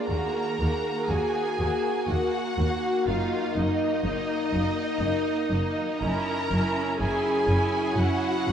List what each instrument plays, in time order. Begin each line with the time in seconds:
Already playing: harp D3 G#3 A#3 F4 G#4 A#4, french horn section G#4
0.08 cello section D#2, double bass section D#2, harp D#3, violin section A#3 F#4 A#5, french horn section A#3, viola section A#4
0.36 harp A#3
0.60 cello section D#2, double bass section D#2, violin section A#3 F#4, harp D#4
0.86 harp F#4
1.10 cello section D#2, double bass section D#2, violin section A#3 F#4 G#5, french horn section F#4, viola section G#4, harp A#4
1.35 harp D#5
1.59 cello section D#2, double bass section D#2, violin section A#3 F#4, harp A#4
1.84 harp D#5
2.08 cello section D#2, double bass section D#2, violin section A#3 F#4 F#5, viola section F#4, harp A#4
2.33 harp F#4
2.58 cello section D#2, double bass section D#2, violin section A#3 F#4, harp D#4
2.82 harp A#3
3.07 double bass section F#1, cello section F#2, harp F#2, violin section A#3 D#4 F5, french horn section D#4, viola section F4
3.32 harp F#3
3.56 double bass section F#1, cello section F#2, harp A#3, violin section A#3 D#4 D#5, viola section D#4
3.81 harp D#4
4.05 double bass section F#1, cello section F#2, violin section A#3 D#4
4.29 harp A#4
4.52 double bass section F#1, cello section F#2, violin section A#3 D#4, harp F#4
4.76 harp A#4
5.00 double bass section F#1, cello section F#2, violin section A#3 D#4, harp F#4
5.25 harp D#4
5.50 double bass section F#1, cello section F#2, harp A#3, violin section A#3 D#4
5.77 harp F#3
6.02 double bass section F#1, cello section F#2, harp F#2, french horn section F#3 E4, violin section C#4 E4 A#5, viola section A#4
6.28 harp C#3
6.52 double bass section F#1, cello section F#2, harp C#4, violin section C#4 E4
6.76 harp E4
7.00 double bass section F#1, cello section F#2, violin section C#4 E4 G#5, harp F#4, viola section G#4
7.24 harp C#5
7.48 double bass section F#1, cello section F#2, violin section C#4 E4, harp F#4
7.72 harp C#5
7.95 double bass section F#1, cello section F#2, violin section C#4 E4 F#5, viola section F#4, harp F#4
8.22 harp E4
8.48 double bass section F#1, cello section F#2